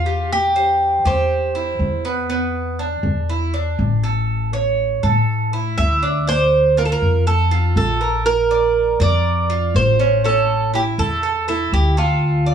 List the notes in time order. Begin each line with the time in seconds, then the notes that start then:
Already playing: E2 F4
0.06 G4
0.32 G4
0.56 C5
1.05 E2 G4 C5
1.55 E4
1.79 E2
2.05 B3
2.30 B3
2.79 D4
3.03 E2
3.29 E4
3.54 D4
3.79 A1
4.04 A4
4.53 C#5
5.03 A2 A4
5.53 E4
5.78 D2 E5
6.03 D4
6.27 D4 C5
6.77 F4 A#4
6.85 A4
6.92 A#4
7.02 F2
7.27 A4
7.51 F4
7.76 A#1 A4
8.01 A#4
8.26 A#4
8.51 D5
9.00 F2 A#4 D5
9.50 F4
9.75 A1 C5
9.99 C#4
10.24 C#4 A4
10.74 E4 G4
10.98 E2 A4
11.23 A4
11.48 E4 A4
11.72 D2 G4
11.97 F4 A4
12.46 D5